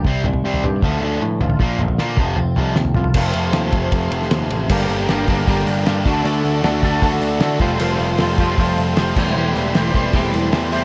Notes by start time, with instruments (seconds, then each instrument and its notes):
0.05 picked electric bass C2, overdriven electric guitar C3 G3 C4, kick, floor tom
0.24 picked electric bass C2, overdriven electric guitar C3 G3, clean electric guitar D#3, floor tom, mid tom
0.33 floor tom
0.44 picked electric bass C2, overdriven electric guitar C3 G3 C4
0.54 floor tom
0.64 picked electric bass G2, overdriven electric guitar C3 G3, clean electric guitar G4, floor tom
0.82 picked electric bass D2, overdriven electric guitar D3 F3 A3, kick, floor tom
1.02 picked electric bass D2, overdriven electric guitar D3 F3 A3
1.21 picked electric bass A2, overdriven electric guitar D3 F3, clean electric guitar A3
1.41 picked electric bass A1, overdriven electric guitar D3 F3, clean electric guitar F4, floor tom, mid tom
1.50 floor tom
1.59 picked electric bass A#1, overdriven electric guitar A#2 F3 A#3, kick, floor tom
1.79 picked electric bass A#1, overdriven electric guitar A#2 F3, clean electric guitar D3, floor tom, mid tom
1.88 floor tom
1.98 overdriven electric guitar A#2 F3 A#3, picked electric bass A#2, snare
2.17 picked electric bass F1, overdriven electric guitar F2 C3 F3, kick, floor tom
2.36 picked electric bass F1, overdriven electric guitar F2 C3, clean electric guitar C4, floor tom
2.56 picked electric bass C2, overdriven electric guitar F2 C3 F3, floor tom
2.76 picked electric bass D#2, overdriven electric guitar F2 C3, clean electric guitar A3, snare
2.85 floor tom
2.94 picked electric bass C2, overdriven electric guitar F2 C3, clean electric guitar F4, floor tom, mid tom
3.04 floor tom
3.14 picked electric bass F1, overdriven electric guitar F2 C3 F3 A3, clean electric guitar F4, string machine A4 C5 F5 C6, kick, crash
3.19 overdriven electric guitar C4
3.33 picked electric bass F1, ride
3.53 picked electric bass D#2, snare, ride
3.73 picked electric bass F1, kick, ride
3.92 picked electric bass F1, kick, ride
4.11 picked electric bass F1, ride
4.22 snare
4.31 picked electric bass D#2, snare, ride
4.50 picked electric bass A1, ride
4.69 picked electric bass G1, overdriven electric guitar G2 D3 G3 A#3 D4 A#4, clean electric guitar G4, string machine A#4 D5 G5 D6, kick, crash
4.88 picked electric bass G1, open hi-hat
5.08 picked electric bass G1, overdriven electric guitar G2 D3 G3 A#3 D4 A#4, clean electric guitar G4, snare, open hi-hat
5.27 overdriven electric guitar G2 D3 G3 A#3 D4 A#4, clean electric guitar G4, kick, open hi-hat
5.47 picked electric bass G1, overdriven electric guitar G2 D3 G3 A#3 D4 A#4, clean electric guitar G4, kick, open hi-hat
5.67 picked electric bass G1, open hi-hat
5.86 picked electric bass G2, overdriven electric guitar G2 D3 G3 A#3 D4 A#4, clean electric guitar G4, snare, open hi-hat
6.05 picked electric bass D2, overdriven electric guitar D3 A3 D4 F#4 A4, string machine A4 F#5, kick, open hi-hat
6.24 picked electric bass D2, overdriven electric guitar D3 A3 D4 F#4 A4, open hi-hat
6.44 picked electric bass D2, open hi-hat
6.63 picked electric bass D2, overdriven electric guitar D3 A3 D4 F#4 A4, snare, open hi-hat
6.83 overdriven electric guitar D3 A3 D4 F#4 A4, kick, open hi-hat
7.02 picked electric bass D2, overdriven electric guitar D3 A3 D4 F#4 A4, kick, open hi-hat
7.13 snare
7.21 picked electric bass D2, open hi-hat
7.40 picked electric bass D3, overdriven electric guitar D3 A3 D4 F#4 A4, snare, open hi-hat
7.60 picked electric bass F1, overdriven electric guitar F3 A3 C4 F4 A4, clean electric guitar G3 C5, string machine F5 G5 C6, kick, open hi-hat
7.79 picked electric bass F1, overdriven electric guitar F3 A3 C4 F4 A4, clean electric guitar G3 C5, crash
7.99 picked electric bass F1, open hi-hat
8.18 picked electric bass F1, overdriven electric guitar F3 A3 C4 F4 A4, clean electric guitar G3 C5, snare, open hi-hat
8.38 overdriven electric guitar F3 A3 C4 F4 A4, clean electric guitar G3 C5, kick, open hi-hat
8.58 picked electric bass F1, overdriven electric guitar F3 A3 C4 F4 A4, clean electric guitar G3 C5, kick, open hi-hat
8.77 picked electric bass F1, open hi-hat
8.96 picked electric bass F1, overdriven electric guitar F3 A3 C4 F4 A4, clean electric guitar G3 C5, snare, open hi-hat
9.16 picked electric bass E1, clean electric guitar E2 A3 E4 C5, overdriven electric guitar E3 G3 C4 G4, string machine A4 E5 C6, kick, crash
9.36 picked electric bass E1, clean electric guitar E2 A3 E4 C5, overdriven electric guitar E3 G3 C4 G4
9.55 picked electric bass E1, open hi-hat
9.74 picked electric bass E1, clean electric guitar E2 A3 E4 C5, overdriven electric guitar E3 G3 C4 G4, snare, open hi-hat
9.93 clean electric guitar E2 A3 E4 C5, overdriven electric guitar E3 G3 C4 G4, kick, open hi-hat
10.13 picked electric bass E1, clean electric guitar E2 A3 E4 C5, overdriven electric guitar E3 G3 C4 G4, kick, open hi-hat
10.24 snare
10.34 picked electric bass E1, open hi-hat
10.52 clean electric guitar E2 A3 E4 C5, picked electric bass E2, overdriven electric guitar E3 G3 C4 G4, snare, open hi-hat
10.71 clean electric guitar E2 A3 E4 C5, overdriven electric guitar E3 G3 C4 G4, open hi-hat